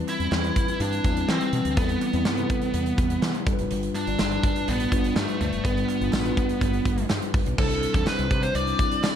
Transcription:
Already playing: E3 G3 C4 E4 B4
0.08 E4, clap, closed hi-hat
0.20 E2 G3 C4 E4 B4, closed hi-hat
0.32 E2, snare, clap
0.44 closed hi-hat
0.56 kick, closed hi-hat
0.68 closed hi-hat
0.80 G2 D4, closed hi-hat
0.93 closed hi-hat
1.04 E2 G3 C4 E4 B4, kick, closed hi-hat
1.17 closed hi-hat
1.29 E3 C4, snare, clap
1.41 closed hi-hat
1.53 B2 E3, closed hi-hat
1.65 D2, closed hi-hat
1.77 E2 G3 B3 C4 E4 A4, kick, closed hi-hat
1.89 closed hi-hat
2.01 clap, closed hi-hat
2.13 E2 G3 C4 E4 B4, closed hi-hat
2.25 G2, snare, clap, tambourine
2.37 C3 G3 E4 B4, closed hi-hat
2.50 kick, closed hi-hat
2.62 closed hi-hat
2.74 E2, closed hi-hat
2.86 closed hi-hat
2.98 E2, kick, closed hi-hat
3.10 closed hi-hat
3.22 E3, snare, clap, tambourine
3.35 closed hi-hat
3.46 G1 G2 G3 D4 F4 A4, kick, closed hi-hat
3.53 B4
3.58 F1, closed hi-hat
3.71 G1, closed hi-hat
3.83 closed hi-hat
3.95 D4, clap, closed hi-hat
4.07 G1 G3 D4 F4 D5, closed hi-hat
4.19 G1, snare, clap, tambourine
4.31 closed hi-hat
4.43 kick, closed hi-hat
4.56 closed hi-hat
4.68 A1 B3, closed hi-hat
4.80 closed hi-hat
4.92 G1 G3 D4 F4 B4, kick, closed hi-hat
5.04 closed hi-hat
5.16 G2 A3, snare, clap, tambourine
5.28 closed hi-hat
5.41 D2 G2 A3, closed hi-hat
5.53 F1, closed hi-hat
5.64 G1 G3 B3 D4 F4 B4, kick, closed hi-hat
5.77 closed hi-hat
5.89 clap, closed hi-hat
6.00 G1 G3 D4 F4 B4, closed hi-hat
6.13 A1, snare, clap, tambourine
6.24 G3 D4 F4 B4, closed hi-hat
6.37 kick, closed hi-hat
6.49 closed hi-hat
6.61 G1, kick, closed hi-hat
6.74 closed hi-hat
6.85 G1, kick, closed hi-hat
6.98 closed hi-hat
7.10 G2, snare, clap, tambourine
7.22 closed hi-hat
7.34 G1, kick, open hi-hat
7.46 B1, closed hi-hat
7.58 C2 C3 G3 C4 D4 E4 A4 C5, kick, crash
7.71 closed hi-hat
7.83 closed hi-hat
7.94 E2 G3 C4 D4 E4 A4 C5, kick, closed hi-hat
8.07 B4, snare, clap, tambourine
8.19 C2, closed hi-hat
8.31 C3, kick, closed hi-hat
8.42 G3 C4 D4 E4 C5, closed hi-hat
8.55 C2 D5, closed hi-hat
8.67 closed hi-hat
8.79 kick, closed hi-hat
8.91 closed hi-hat
9.04 D5, snare, clap, tambourine

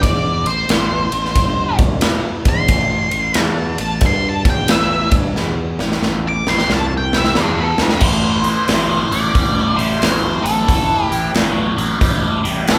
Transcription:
0.01 E2 D5, kick, ride
0.46 A1 C5, ride
0.69 A1, snare, ride
1.12 A1, ride
1.25 snare
1.35 G1, kick, ride
1.79 C2, kick, ride
2.01 muted fingered electric bass stroke, snare, ride
2.45 E2 C6, kick, ride
2.68 A1, kick, ride
3.11 A1, ride
3.34 E2, snare, ride
3.41 A5
3.78 A1 A5, ride
4.01 G2, kick, ride
4.06 C6
4.29 A5
4.45 E2, kick, ride
4.50 G5
4.68 A1 E5, snare, ride
5.11 G2, kick, ride
5.35 E2, snare
5.79 A1, snare
5.92 snare
6.02 A1, snare
6.28 D6
6.46 A1 C6, snare
6.58 snare
6.69 C2, snare
6.74 A5
6.97 G5
7.13 snare
7.18 E5
7.24 snare
7.35 E2 B4, snare
7.40 D5
7.63 A4
7.78 D2 C5, snare
7.89 snare
8.00 A1 A2 E3, kick, crash
8.43 A2 E3, open hi-hat
8.68 A1 A2 F#3, snare, open hi-hat
9.11 A1 A2 F#3 D5, open hi-hat
9.33 A1 A2 G3, kick, open hi-hat
9.77 A1 A2 G3 C5, open hi-hat
10.00 A1 A2 F#3 C5, snare, open hi-hat
10.42 A1 A2 F#3 A4, open hi-hat
10.66 A1 A2 E3, kick, open hi-hat
11.04 G4
11.09 A1 A2 E3, open hi-hat
11.34 A1 A2 F#3, snare, open hi-hat
11.76 A1 A2 F#3, open hi-hat
12.00 A1 A2 G3, kick, open hi-hat
12.43 A1 A2 G3, open hi-hat
12.65 A2 F#3 A4, snare, open hi-hat
12.69 A1

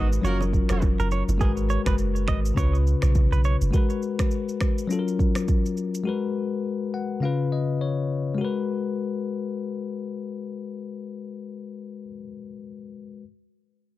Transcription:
Already playing: G#1 G#3 F#4 A#4 B4
0.13 shaker
0.22 F#1 F#3 A#3 C#4 F4 F#4 A#4 C#5, low conga, shaker
0.27 A#4
0.41 low bongo, shaker
0.53 kick, shaker
0.69 F1 F#4 A#4 C#5, finger snap, cross-stick, low bongo, shaker
0.82 kick, high bongo, shaker
1.00 F#1 A#4, shaker
1.11 C#5, high bongo, shaker
1.29 F#1, high bongo, shaker
1.38 G#1 G#3 F#4 G#4 A#4, kick, shaker
1.43 B4
1.57 shaker
1.70 C#5, shaker
1.86 F#1 B4, finger snap, kick, cross-stick, shaker
1.98 shaker
2.16 shaker
2.28 G#1 D#5, finger snap, kick, cross-stick, shaker
2.45 shaker
2.54 C#2 C#3 C#4 F4 C#5, kick, shaker
2.59 B4
2.75 shaker
2.87 shaker
3.02 B1, finger snap, cross-stick, shaker
3.15 kick, shaker
3.32 B1 B4, shaker
3.44 C#5, shaker
3.61 F#1, shaker
3.71 G#3 F#4 A#4, kick, shaker
3.76 B4
3.90 shaker
4.02 shaker
4.19 finger snap, kick, cross-stick, shaker
4.31 shaker
4.49 shaker
4.61 finger snap, kick, cross-stick, shaker
4.78 shaker
4.87 F#3 C#4 F4, shaker
4.92 A4
4.99 A#4
5.08 shaker
5.19 kick, shaker
5.35 finger snap, cross-stick, shaker
5.48 kick, shaker
5.66 shaker
5.77 shaker
5.94 shaker
6.04 G#3 F#4 A#4
6.09 B4
6.94 F#5
7.20 C#3 C#4 F4 F5
7.25 B4
7.52 D#5
7.81 C#5
8.35 G#3 F#4
8.41 A#4 B4

